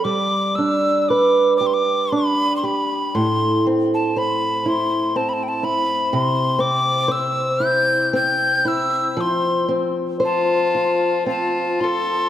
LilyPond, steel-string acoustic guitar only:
\new Staff \with { instrumentName = "Steel-string acoustic guitar" } { \time 3/4 \key g \mixolydian \tempo 4 = 58 g8 d'8 b'8 g'8 d'8 g'8 | a,8 c'8 c''8 e'8 c'8 e'8 | c8 c'8 c''8 e'8 c'8 e'8 | f8 c'8 c''8 f'8 c'8 f'8 | }